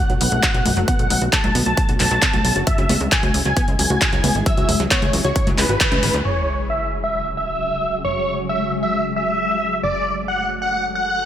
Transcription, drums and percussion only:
0.10 closed hi-hat
0.21 open hi-hat
0.32 high conga
0.43 kick, clap, closed hi-hat
0.54 closed hi-hat
0.66 open hi-hat, high conga
0.77 closed hi-hat
0.88 kick, closed hi-hat
0.99 closed hi-hat
1.10 open hi-hat, high conga
1.22 closed hi-hat
1.33 kick, clap, closed hi-hat
1.44 closed hi-hat, high conga
1.55 open hi-hat
1.66 closed hi-hat
1.77 kick, closed hi-hat
1.89 closed hi-hat
2.00 clap, open hi-hat
2.11 closed hi-hat
2.22 kick, clap, closed hi-hat
2.33 closed hi-hat, high conga
2.45 open hi-hat
2.56 closed hi-hat
2.67 kick, closed hi-hat
2.78 closed hi-hat
2.89 open hi-hat, high conga
3.01 closed hi-hat
3.12 kick, clap, closed hi-hat
3.23 closed hi-hat, high conga
3.34 open hi-hat
3.45 closed hi-hat
3.57 kick, closed hi-hat
3.68 closed hi-hat
3.79 open hi-hat
3.90 closed hi-hat, high conga
4.01 kick, clap, closed hi-hat
4.13 closed hi-hat
4.24 open hi-hat, high conga
4.35 closed hi-hat
4.46 kick, closed hi-hat
4.57 closed hi-hat
4.69 open hi-hat, high conga
4.80 closed hi-hat
4.91 kick, clap, closed hi-hat
5.02 closed hi-hat, high conga
5.13 open hi-hat
5.25 closed hi-hat
5.36 kick, closed hi-hat
5.47 closed hi-hat, high conga
5.58 clap, open hi-hat
5.69 closed hi-hat
5.80 kick, clap, closed hi-hat
5.92 closed hi-hat, high conga
6.03 open hi-hat
6.14 closed hi-hat

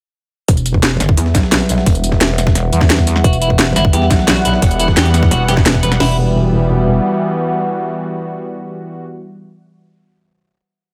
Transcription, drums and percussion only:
0.48 kick, closed hi-hat
0.57 closed hi-hat, tambourine
0.66 closed hi-hat, tambourine
0.74 kick
0.83 snare, closed hi-hat
1.00 snare, closed hi-hat, tambourine
1.09 kick
1.17 closed hi-hat
1.26 snare
1.35 kick, snare, closed hi-hat, tambourine
1.43 snare
1.52 snare, closed hi-hat
1.61 snare, tambourine
1.69 snare, closed hi-hat, tambourine
1.78 snare
1.86 kick, closed hi-hat, open hi-hat
1.95 closed hi-hat, tambourine
2.04 closed hi-hat, tambourine
2.12 kick, snare
2.21 snare, closed hi-hat
2.30 snare
2.38 snare, closed hi-hat, tambourine
2.47 kick, snare
2.55 snare, closed hi-hat
2.73 closed hi-hat, tambourine
2.81 kick, snare
2.90 snare, closed hi-hat
2.98 kick, snare, tambourine
3.07 snare, closed hi-hat, tambourine
3.16 snare
3.24 kick, closed hi-hat
3.33 closed hi-hat, tambourine
3.42 closed hi-hat, tambourine
3.50 kick
3.59 snare, closed hi-hat
3.76 snare, closed hi-hat, tambourine
3.85 kick
3.93 closed hi-hat
4.02 snare
4.11 kick, snare, closed hi-hat, tambourine
4.19 snare
4.28 snare, closed hi-hat
4.36 snare, tambourine
4.45 snare, closed hi-hat, tambourine
4.54 snare
4.62 kick, closed hi-hat, open hi-hat
4.71 closed hi-hat, tambourine
4.79 closed hi-hat, tambourine
4.88 kick, snare
4.97 snare, closed hi-hat
5.05 snare, closed hi-hat
5.14 snare, closed hi-hat, tambourine
5.23 kick, snare
5.31 snare, closed hi-hat
5.48 snare, closed hi-hat, tambourine
5.57 kick, snare
5.66 snare, closed hi-hat
5.74 kick, snare, tambourine
5.83 snare, closed hi-hat, tambourine
5.92 snare, closed hi-hat
6.00 snare, crash

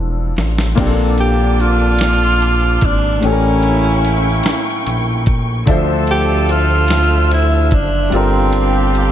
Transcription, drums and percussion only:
0.37 snare, closed hi-hat
0.58 snare
0.78 kick, closed hi-hat, crash
1.18 closed hi-hat
1.60 closed hi-hat
1.99 snare, closed hi-hat
2.42 closed hi-hat
2.81 kick, closed hi-hat
3.23 closed hi-hat
3.63 closed hi-hat
4.05 closed hi-hat
4.43 snare, closed hi-hat
4.87 closed hi-hat
5.26 kick, closed hi-hat
5.67 kick, closed hi-hat
6.07 closed hi-hat
6.49 closed hi-hat
6.88 snare, closed hi-hat
7.31 closed hi-hat
7.71 kick, closed hi-hat
8.12 closed hi-hat
8.53 closed hi-hat
8.95 closed hi-hat

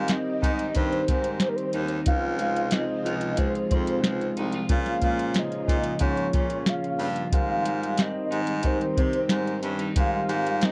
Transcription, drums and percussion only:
0.08 snare, closed hi-hat
0.43 kick, closed hi-hat
0.59 closed hi-hat
0.75 kick, closed hi-hat
0.92 closed hi-hat
1.08 kick, closed hi-hat
1.24 closed hi-hat
1.40 snare, closed hi-hat
1.58 closed hi-hat
1.73 closed hi-hat
1.88 closed hi-hat
2.06 kick, closed hi-hat
2.39 closed hi-hat
2.56 closed hi-hat
2.71 snare, closed hi-hat
3.06 closed hi-hat
3.21 closed hi-hat
3.37 kick, closed hi-hat
3.55 closed hi-hat
3.71 kick, closed hi-hat
3.87 closed hi-hat
4.04 snare, closed hi-hat
4.21 closed hi-hat
4.37 closed hi-hat
4.52 closed hi-hat
4.69 kick, closed hi-hat
4.86 snare, closed hi-hat
5.02 kick, closed hi-hat
5.19 closed hi-hat
5.34 snare, closed hi-hat
5.52 closed hi-hat
5.68 kick, closed hi-hat
5.84 closed hi-hat
5.99 kick, closed hi-hat
6.17 closed hi-hat
6.33 kick, closed hi-hat
6.50 closed hi-hat
6.66 snare, closed hi-hat
6.84 closed hi-hat
6.99 open hi-hat
7.16 closed hi-hat
7.32 kick, closed hi-hat
7.66 closed hi-hat
7.83 closed hi-hat
7.98 snare, closed hi-hat
8.32 closed hi-hat
8.47 closed hi-hat
8.63 kick, closed hi-hat
8.81 closed hi-hat
8.97 kick, closed hi-hat
9.13 closed hi-hat
9.29 snare, closed hi-hat
9.47 closed hi-hat
9.63 closed hi-hat
9.79 closed hi-hat
9.96 kick, closed hi-hat
10.29 closed hi-hat
10.47 closed hi-hat
10.61 snare, closed hi-hat

